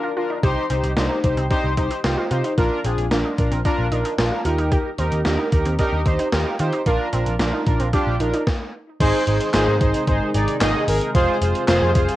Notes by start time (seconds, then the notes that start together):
Already playing: D4 F4 A#4
0.03 F4
0.16 D4 F4 A#4
0.30 D#4
0.43 C2 D#4 G4 C5, kick, closed hi-hat
0.70 C2 C4 D#4 G4 C5, closed hi-hat
0.84 C2, closed hi-hat
0.97 C2 D4 D#4 G4 C5, snare, closed hi-hat
1.10 D#4
1.23 C2 D#4 G4 C5, kick, closed hi-hat
1.37 C2 C4, closed hi-hat
1.50 D4 D#4 G4 C5, kick, closed hi-hat
1.64 C2
1.77 C2 D#4 G4 C5, kick, closed hi-hat
1.91 D#4, closed hi-hat
2.04 C2 D#4 F4 G4 C5, snare, closed hi-hat
2.18 F4
2.31 C3 D#4 F4 G4 C5, closed hi-hat
2.44 D#4, closed hi-hat
2.58 A#1 D4 F4 A#4, kick, closed hi-hat
2.84 A#1 C4 D4 F4 G#4, closed hi-hat
2.98 A#1, closed hi-hat
3.11 A#1 D4 F4 A#4, snare, closed hi-hat
3.25 D#4
3.38 A#1 D4 F4 A#4, kick, closed hi-hat
3.51 A#1 C4, closed hi-hat
3.65 D4 F4 A#4, kick, closed hi-hat
3.78 A#1
3.92 A#1 D4 D#4 F4 A#4, closed hi-hat
4.05 D#4, closed hi-hat
4.18 A#1 D4 F4 A#4, snare, closed hi-hat
4.32 F4
4.45 D#2 D#4 F4 G4 A#4, closed hi-hat
4.58 D#4, closed hi-hat
4.72 G4, kick, closed hi-hat
4.99 D#2 C4 D#4 G4 A#4, closed hi-hat
5.12 D#2, closed hi-hat
5.25 D#2 D4 D#4 G4 A#4, snare, closed hi-hat
5.39 D#4
5.52 D#2 D#4 G4 A#4, kick, closed hi-hat
5.66 D#2 C4, closed hi-hat
5.79 D4 D#4 G4 A#4, kick, closed hi-hat
5.93 D#2
6.06 D#2 D#4 G4 C5, kick, closed hi-hat
6.19 D#4, closed hi-hat
6.32 D#2 D#4 F4 G4 A#4, snare, closed hi-hat
6.46 F4
6.59 D#3 D#4 F4 G4 C5, closed hi-hat
6.72 D#4, closed hi-hat
6.86 A#1 D4 F4 A#4, kick, closed hi-hat
7.13 A#1 C4 D4 F4 A#4, closed hi-hat
7.26 A#1, closed hi-hat
7.39 A#1 D4 F4 A#4, snare, closed hi-hat
7.53 D#4
7.67 A#1 D4 F4 A#4, kick, closed hi-hat
7.80 A#1 C4, closed hi-hat
7.93 D4 F4 G4, kick, closed hi-hat
8.07 A#1
8.20 A#1 D4 D#4 F4 A#4, closed hi-hat
8.34 D#4, closed hi-hat
8.47 kick, snare
9.00 G#1 C3 D#3 G#3 D#4 G#4 C5, kick, closed hi-hat, crash
9.27 G#1 D#4 G#4 C5, closed hi-hat
9.41 closed hi-hat
9.54 G#1 D#4 G#4 C5, snare, clap, closed hi-hat
9.68 G#2
9.81 G#1 D#4 G#4 C5, kick, closed hi-hat
9.94 closed hi-hat
10.07 G#1 D#4 G#4 C5, kick, closed hi-hat
10.34 G#1 D#4 G#4 D5, closed hi-hat
10.48 closed hi-hat
10.61 G#1 D#4 G#4 D#5, snare, clap, closed hi-hat
10.88 G#1 D#4 G#4 A#4, open hi-hat
11.01 closed hi-hat
11.15 F1 G3 F4 G#4 C5, kick, closed hi-hat
11.41 F1 F4 G#4 C5, closed hi-hat
11.55 closed hi-hat
11.68 F1 F4 G#4 C5, snare, clap, closed hi-hat
11.82 F2
11.95 F1 F4 G#4 C5, kick, closed hi-hat
12.09 closed hi-hat